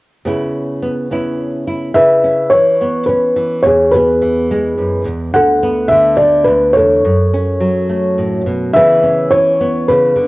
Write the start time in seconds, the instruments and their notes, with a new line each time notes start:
0.25 nylon-string guitar C#3 B3 C#4 E4
0.82 nylon-string guitar B3
1.11 nylon-string guitar B3 C#4 E4
1.68 nylon-string guitar E4
1.94 nylon-string guitar C#3, felt piano B4 E5
2.24 nylon-string guitar C#4
2.50 nylon-string guitar E3, felt piano C#5
2.81 nylon-string guitar B3
3.06 nylon-string guitar C#4, felt piano B4
3.36 nylon-string guitar E3
3.63 nylon-string guitar E2, felt piano C#5
3.67 felt piano G#4
3.91 nylon-string guitar B3, felt piano B4
3.96 felt piano G#4
4.22 nylon-string guitar E3
4.51 nylon-string guitar G#3
4.78 nylon-string guitar F#2
5.05 nylon-string guitar E2
5.34 nylon-string guitar D2, felt piano A4 F#5
5.63 nylon-string guitar B3
5.88 nylon-string guitar D3, felt piano E5
6.17 nylon-string guitar A3, felt piano D5
6.44 nylon-string guitar D2, felt piano B4
6.73 nylon-string guitar E2, felt piano A4 C#5
7.05 nylon-string guitar F#2
7.34 nylon-string guitar C#4
7.61 nylon-string guitar F#3
7.89 nylon-string guitar A3
8.18 nylon-string guitar A2
8.46 nylon-string guitar B2
8.73 nylon-string guitar C#3 E3 B3 C#4, felt piano B4 E5
8.78 nylon-string guitar E4
9.03 nylon-string guitar C#4
9.30 nylon-string guitar E3, felt piano C#5
9.60 nylon-string guitar B3
9.88 nylon-string guitar C#3, felt piano B4
10.16 nylon-string guitar D3